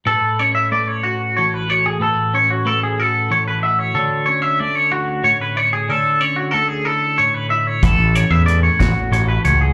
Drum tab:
HH |------|------|------|------|
SD |------|------|------|------|
BD |------|------|------|------|

HH |xxxxxx|
SD |---o--|
BD |o--o--|